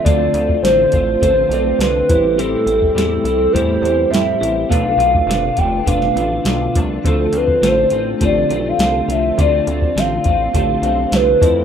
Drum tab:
HH |x-x-x-x-x-x-x-x-|x-x-x-x-x-x-x-x-|x-x-x-x-x-x-x-x-|x-x-x-x-x-x-x-x-|
SD |----o-------o---|----o-------o---|----o----o--o---|----o-------o---|
BD |o--o--o-o-----o-|---o----o-------|o--o--o-o-----o-|o--o----o-------|

HH |x-x-x-x-x-x-x-x-|
SD |----o-------o---|
BD |o--o--o-o-----o-|